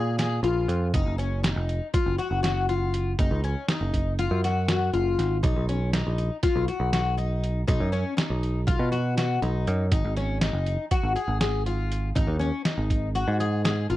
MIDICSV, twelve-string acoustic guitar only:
0, 0, Header, 1, 2, 480
1, 0, Start_track
1, 0, Tempo, 498753
1, 901, Time_signature, 9, 3, 24, 8
1, 13442, End_track
2, 0, Start_track
2, 0, Title_t, "Twelve-string acoustic guitar"
2, 0, Program_c, 0, 25
2, 0, Note_on_c, 0, 68, 70
2, 144, Note_off_c, 0, 68, 0
2, 178, Note_on_c, 0, 68, 75
2, 385, Note_off_c, 0, 68, 0
2, 418, Note_on_c, 0, 65, 65
2, 832, Note_off_c, 0, 65, 0
2, 903, Note_on_c, 0, 63, 77
2, 1109, Note_off_c, 0, 63, 0
2, 1138, Note_on_c, 0, 61, 68
2, 1346, Note_off_c, 0, 61, 0
2, 1380, Note_on_c, 0, 63, 67
2, 1795, Note_off_c, 0, 63, 0
2, 1864, Note_on_c, 0, 65, 77
2, 2071, Note_off_c, 0, 65, 0
2, 2102, Note_on_c, 0, 66, 72
2, 2310, Note_off_c, 0, 66, 0
2, 2338, Note_on_c, 0, 66, 73
2, 2548, Note_off_c, 0, 66, 0
2, 2587, Note_on_c, 0, 65, 69
2, 3000, Note_off_c, 0, 65, 0
2, 3068, Note_on_c, 0, 63, 77
2, 3274, Note_off_c, 0, 63, 0
2, 3312, Note_on_c, 0, 61, 67
2, 3517, Note_off_c, 0, 61, 0
2, 3555, Note_on_c, 0, 63, 70
2, 3965, Note_off_c, 0, 63, 0
2, 4031, Note_on_c, 0, 65, 78
2, 4237, Note_off_c, 0, 65, 0
2, 4275, Note_on_c, 0, 66, 67
2, 4479, Note_off_c, 0, 66, 0
2, 4513, Note_on_c, 0, 66, 70
2, 4718, Note_off_c, 0, 66, 0
2, 4749, Note_on_c, 0, 65, 63
2, 5162, Note_off_c, 0, 65, 0
2, 5225, Note_on_c, 0, 63, 67
2, 5433, Note_off_c, 0, 63, 0
2, 5473, Note_on_c, 0, 61, 63
2, 5678, Note_off_c, 0, 61, 0
2, 5712, Note_on_c, 0, 63, 69
2, 6123, Note_off_c, 0, 63, 0
2, 6188, Note_on_c, 0, 65, 74
2, 6395, Note_off_c, 0, 65, 0
2, 6429, Note_on_c, 0, 66, 68
2, 6636, Note_off_c, 0, 66, 0
2, 6668, Note_on_c, 0, 66, 74
2, 6875, Note_off_c, 0, 66, 0
2, 6906, Note_on_c, 0, 63, 62
2, 7319, Note_off_c, 0, 63, 0
2, 7386, Note_on_c, 0, 63, 80
2, 7593, Note_off_c, 0, 63, 0
2, 7624, Note_on_c, 0, 61, 71
2, 7832, Note_off_c, 0, 61, 0
2, 7861, Note_on_c, 0, 63, 62
2, 8276, Note_off_c, 0, 63, 0
2, 8343, Note_on_c, 0, 65, 82
2, 8551, Note_off_c, 0, 65, 0
2, 8583, Note_on_c, 0, 66, 69
2, 8791, Note_off_c, 0, 66, 0
2, 8828, Note_on_c, 0, 66, 75
2, 9033, Note_off_c, 0, 66, 0
2, 9069, Note_on_c, 0, 63, 65
2, 9479, Note_off_c, 0, 63, 0
2, 9543, Note_on_c, 0, 63, 78
2, 9749, Note_off_c, 0, 63, 0
2, 9787, Note_on_c, 0, 61, 69
2, 9991, Note_off_c, 0, 61, 0
2, 10021, Note_on_c, 0, 63, 69
2, 10434, Note_off_c, 0, 63, 0
2, 10501, Note_on_c, 0, 66, 77
2, 10707, Note_off_c, 0, 66, 0
2, 10736, Note_on_c, 0, 68, 74
2, 10944, Note_off_c, 0, 68, 0
2, 10977, Note_on_c, 0, 68, 70
2, 11185, Note_off_c, 0, 68, 0
2, 11223, Note_on_c, 0, 65, 67
2, 11633, Note_off_c, 0, 65, 0
2, 11697, Note_on_c, 0, 63, 76
2, 11904, Note_off_c, 0, 63, 0
2, 11928, Note_on_c, 0, 61, 66
2, 12139, Note_off_c, 0, 61, 0
2, 12175, Note_on_c, 0, 63, 60
2, 12588, Note_off_c, 0, 63, 0
2, 12656, Note_on_c, 0, 66, 75
2, 12863, Note_off_c, 0, 66, 0
2, 12897, Note_on_c, 0, 68, 68
2, 13103, Note_off_c, 0, 68, 0
2, 13132, Note_on_c, 0, 68, 69
2, 13340, Note_off_c, 0, 68, 0
2, 13374, Note_on_c, 0, 65, 65
2, 13442, Note_off_c, 0, 65, 0
2, 13442, End_track
0, 0, End_of_file